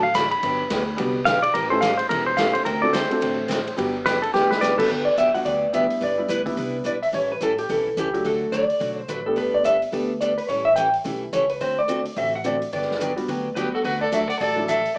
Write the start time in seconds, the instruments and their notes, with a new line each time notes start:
Already playing: upright bass A1
0.03 pedal steel guitar F5
0.14 steel-string acoustic guitar D3 F#3 A3 D4 F#4, pedal steel guitar B5, kick, snare, hi-hat pedal, ride
0.31 pedal steel guitar B5, ride
0.43 upright bass G1, steel-string acoustic guitar D3 F#3 B3 D4 G4, kick, ride
0.70 upright bass D2, steel-string acoustic guitar D3 F#3 B3 D4 G4, kick, snare, hi-hat pedal, ride
0.97 upright bass C2, steel-string acoustic guitar D3 F#3 B3 D4 G4, upright piano G3 B3 D4 F#4 G4, kick, ride
1.25 upright bass B1, steel-string acoustic guitar D3 F#3 B3 D4 G4, pedal steel guitar F5, kick, snare, hi-hat pedal, ride
1.43 pedal steel guitar D5, ride
1.54 upright bass A1, steel-string acoustic guitar E3 G3 C#4 E4 A4, pedal steel guitar A#4, kick, ride
1.70 upright piano A3 C#4 E4 G4 A4, pedal steel guitar C5
1.81 steel-string acoustic guitar E3 G3 C#4 E4 A4, pedal steel guitar F5, kick, snare, hi-hat pedal, ride
1.98 pedal steel guitar C5, ride
2.09 upright bass E1, steel-string acoustic guitar E3 G3 C#4 E4 A4, pedal steel guitar A#4, kick, ride
2.27 pedal steel guitar C5
2.37 steel-string acoustic guitar E3 G3 C#4 E4 A4, upright piano A3 C#4 E4 G4 A4, pedal steel guitar F5, kick, snare, hi-hat pedal, ride
2.54 pedal steel guitar C5, ride
2.65 upright bass D2, steel-string acoustic guitar D3 A3 C4 F#4 A4, pedal steel guitar A#4, kick, ride
2.82 upright piano A3 C4 D4 F#4 A4, pedal steel guitar D5
2.93 steel-string acoustic guitar D3 A3 C4 F#4 A4, pedal steel guitar C5, kick, snare, hi-hat pedal, ride
3.10 upright piano A3 C4 D4 F#4 A4, ride
3.21 upright bass A1, steel-string acoustic guitar D3 A3 C4 F#4 A4, kick, ride
3.48 steel-string acoustic guitar D3 A3 C4 F#4 A4, kick, snare, hi-hat pedal, ride
3.67 ride
3.77 upright bass G1, steel-string acoustic guitar D3 F#3 B3 D4 G4, upright piano G3 B3 D4 F#4 G4, kick, ride
4.06 steel-string acoustic guitar D3 F#3 B3 D4 G4, pedal steel guitar B4, kick, snare, hi-hat pedal, ride
4.22 pedal steel guitar A4, ride
4.34 upright bass D2, steel-string acoustic guitar D3 F#3 B3 D4 G4, pedal steel guitar G4, snare
4.51 pedal steel guitar B4, snare
4.61 steel-string acoustic guitar D3 F#3 B3 D4 G4, electric slide guitar B4, pedal steel guitar D5, snare, hi-hat pedal
4.77 upright piano G3 B3 D4 F#4 A4, electric slide guitar A4, pedal steel guitar B4, kick, crash
4.89 upright bass G1, steel-string acoustic guitar D3 F#3 B3 D4 G4, electric slide guitar B4, kick
5.05 electric slide guitar D5
5.17 steel-string acoustic guitar D3 F#3 B3 D4 G4, electric slide guitar E5, closed hi-hat
5.34 upright piano G3 B3 D4 F#4, electric slide guitar F#5, open hi-hat
5.45 upright bass D2, steel-string acoustic guitar D3 F#3 B3 D4 G4, electric slide guitar D5, kick, open hi-hat
5.73 steel-string acoustic guitar D3 F#3 B3 D4 G4, upright piano G3 B3 D4 E4, electric slide guitar E5, closed hi-hat
5.90 open hi-hat
6.00 upright bass G1, steel-string acoustic guitar G3 D4 E4 B4, electric slide guitar D5, kick, open hi-hat
6.18 upright piano G3 B3 D4 E4
6.28 upright bass D2, steel-string acoustic guitar G3 D4 E4 B4, electric slide guitar B4, closed hi-hat
6.45 upright piano G3 B3 D4 E4, kick, open hi-hat
6.57 upright bass C2, steel-string acoustic guitar G3 D4 E4 B4, kick, open hi-hat
6.84 upright bass B1, steel-string acoustic guitar G3 D4 E4 B4, electric slide guitar D5, closed hi-hat
7.03 electric slide guitar E5, open hi-hat
7.12 upright bass A1, steel-string acoustic guitar E3 G3 C#4 E4 A4, electric slide guitar C#5, kick, open hi-hat
7.32 electric slide guitar B4
7.41 upright bass A1, steel-string acoustic guitar E3 G3 C#4 E4 A4, electric slide guitar A4, closed hi-hat
7.58 electric slide guitar G4, open hi-hat
7.69 upright bass B1, steel-string acoustic guitar E3 G3 C#4 E4 A4, electric slide guitar A4, kick, open hi-hat
7.97 upright bass C#2, steel-string acoustic guitar E3 G3 C#4 E4 A4, electric slide guitar G4, closed hi-hat
8.13 upright piano F#3 A3 D4 F#4, open hi-hat
8.24 upright bass D2, steel-string acoustic guitar D3 F#3 A3 D4 F#4, electric slide guitar A4, kick, open hi-hat
8.52 steel-string acoustic guitar D3 F#3 A3 D4 F#4, electric slide guitar D5, closed hi-hat
8.70 open hi-hat
8.79 upright bass B1, steel-string acoustic guitar D3 F#3 A3 D4 F#4, kick, open hi-hat
8.97 electric slide guitar C5
9.08 upright bass A1, steel-string acoustic guitar D3 F#3 A3 D4 F#4, electric slide guitar B4, closed hi-hat
9.26 upright piano A3 B3 D4 G4, electric slide guitar A4
9.36 upright bass G1, steel-string acoustic guitar G3 B3 D4 A4, electric slide guitar B4, kick, open hi-hat
9.54 electric slide guitar D5
9.64 steel-string acoustic guitar G3 B3 D4 A4, electric slide guitar E5, closed hi-hat
9.82 open hi-hat
9.92 upright bass D2, steel-string acoustic guitar G3 B3 D4 A4, upright piano A3 B3 D4 G4, kick, open hi-hat
10.21 steel-string acoustic guitar G3 B3 D4 A4, electric slide guitar D5, closed hi-hat
10.38 electric slide guitar B4, open hi-hat
10.48 upright bass A1, steel-string acoustic guitar E3 G3 C#4 E4 A4, electric slide guitar C#5, kick, open hi-hat
10.65 electric slide guitar E5
10.76 steel-string acoustic guitar E3 G3 C#4 E4 A4, electric slide guitar G5, closed hi-hat
10.93 open hi-hat
11.04 upright bass B1, steel-string acoustic guitar E3 G3 C#4 E4 A4, upright piano A3 C#4 E4 G4, kick, open hi-hat
11.33 upright bass C#2, steel-string acoustic guitar E3 G3 C#4 E4 A4, electric slide guitar C#5, closed hi-hat
11.49 electric slide guitar B4, open hi-hat
11.61 upright bass D2, steel-string acoustic guitar D3 A3 C4 F#4 A4, electric slide guitar C5, kick, open hi-hat
11.79 electric slide guitar D5
11.88 steel-string acoustic guitar D3 A3 C4 F#4 A4, upright piano A3 C4 D4 F#4, closed hi-hat
12.05 open hi-hat
12.16 upright bass A1, steel-string acoustic guitar D3 A3 C4 F#4 A4, electric slide guitar E5, kick, open hi-hat
12.35 electric slide guitar F#5
12.44 steel-string acoustic guitar D3 A3 C4 F#4 A4, upright piano A3 C4 D4 F#4, electric slide guitar D5, closed hi-hat
12.62 open hi-hat
12.72 upright bass G1, steel-string acoustic guitar D3 F#3 B3 D4 G4, electric slide guitar D5, kick, open hi-hat
12.82 snare
12.91 snare
13.00 steel-string acoustic guitar D3 F#3 B3 D4 G4, closed hi-hat
13.16 upright piano G3 B3 D4 F#4, open hi-hat
13.28 upright bass D2, steel-string acoustic guitar D3 F#3 B3 D4 G4, kick, open hi-hat
13.55 steel-string acoustic guitar D3 F#3 B3 D4 G4, upright piano G3 B3 D4 F#4, fiddle G4, electric slide guitar B4, closed hi-hat
13.73 fiddle F#4, electric slide guitar A4
13.83 upright bass D2, steel-string acoustic guitar D3 F#3 A3 D4 F#4, fiddle F#4, electric slide guitar B4, kick, open hi-hat
14.01 fiddle A4, electric slide guitar D5
14.12 steel-string acoustic guitar D3 F#3 A3 D4 F#4, upright piano F#3 A3 D4 F#4, fiddle A4, electric slide guitar E5, closed hi-hat
14.29 fiddle D5, electric slide guitar F#5, open hi-hat
14.39 upright bass A1, steel-string acoustic guitar D3 F#3 A3 D4 F#4, fiddle A4, electric slide guitar D5, kick, open hi-hat
14.56 upright piano F#3 A3 D4 E4
14.68 steel-string acoustic guitar D3 F#3 A3 D4 F#4, fiddle A4, electric slide guitar E5, closed hi-hat
14.85 open hi-hat